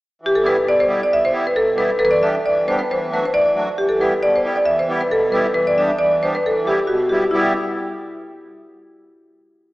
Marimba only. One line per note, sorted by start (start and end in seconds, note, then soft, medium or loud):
0.26 0.35 G4 medium
0.35 0.45 A4 medium
0.46 0.68 B4 medium
0.69 0.79 D5 medium
0.80 1.01 C5 medium
1.03 1.12 D5 medium
1.13 1.23 E5 medium
1.25 1.46 C5 medium
1.47 1.55 B4 medium
1.56 1.76 A4 medium
1.78 1.98 B4 medium
1.99 2.04 A4 medium
1.99 2.02 B4 medium
2.05 2.11 B4 medium
2.11 2.22 D5 medium
2.23 2.45 E5 medium
2.46 2.68 D5 medium
2.68 2.78 C5 medium
2.79 2.89 B4 medium
2.91 3.13 C5 medium
3.13 3.24 B4 medium
3.25 3.30 C5 medium
3.34 3.79 D5 medium
3.78 3.90 G4 medium
3.89 4.00 A4 medium
4.01 4.23 B4 medium
4.23 4.34 D5 medium
4.36 4.55 C5 medium
4.56 4.66 D5 medium
4.66 4.78 E5 medium
4.79 4.99 C5 medium
5.01 5.12 B4 medium
5.11 5.34 A4 medium
5.32 5.42 B4 medium
5.54 5.66 B4 medium
5.67 5.78 D5 medium
5.78 6.01 E5 medium
5.99 6.22 D5 medium
6.23 6.34 C5 medium
6.35 6.44 B4 medium
6.46 6.68 A4 medium
6.67 6.89 G4 medium
6.87 6.97 F#4 medium
7.09 7.30 G4 medium
7.31 7.52 E4 medium